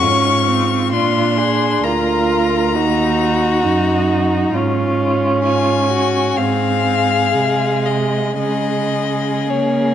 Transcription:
Already playing: C#6
0.02 G#2 C#4 F4
0.48 C4
0.92 A#2 D4 F4 C6
1.38 G#4
1.83 D2 F4 A#4 A#5
2.73 D#2 D#4 F#4
3.64 F#2 D#4
4.53 G#2 C#4 F4
5.45 F4 G#5
5.90 F#4
6.37 G#2 C4 G#4 F5
7.35 C3 G#3
7.86 D#5
8.39 C#3 G#3 G#4 D#5
9.49 A#3 C#5

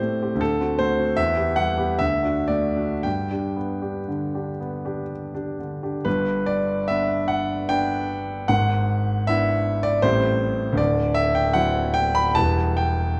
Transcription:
Already playing: A2 C4 G4 C5
0.02 A3
0.22 C4 G4
0.35 D2
0.41 A4
0.61 C4 F#4
0.79 A3 C5
0.98 C4 F#4
1.17 E2 E5
1.37 B3 G4
1.56 G3 F#5
1.77 B3 G4
1.99 D2 E5
2.23 D4 F#4
2.48 A3 D5
2.76 D4 F#4
3.03 G2 G5
3.31 D4 G4
3.56 B3
3.82 D4 G4
4.08 D3
4.35 D4 G4
4.60 B3
4.85 D4 G4
5.35 D4 G4
5.59 D3
5.83 D4 G4
6.05 G1 G2 B4
6.46 D5
6.88 B3 D4 E5
7.28 F#5
7.69 B3 D4 G5
8.48 G#1 G#2 F#5
9.27 B3 D4 E4 E5
9.83 D5
10.02 A1 A2 G3 C4 E4 C5
10.72 D1 D2
10.77 D5
11.14 E5
11.35 G5
11.53 F#3 C4 E4 F#5
11.94 G5
12.15 B5
12.35 E1 E2 G3 B3 E4 A5
12.77 G5

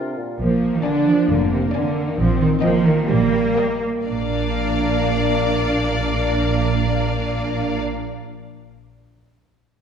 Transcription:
Already playing: C3 D4 F4 A#4
0.17 A#2
0.40 A#1 F3 A#3
0.74 D#3
0.85 D3 A#3 D4 D5 G#5
1.07 F3
1.30 F1 D3 A#3
1.51 C3
1.73 D3 A#3 D5 G#5
2.07 D#3
2.18 A#1 F3 C4
2.41 D#3
2.62 F3 A#3 D#5 G5
2.86 D#3
3.10 A#1 G3 A#3
3.57 G3 A#3 D#5 G5
4.05 A#1 A#3 D4 D5 F5

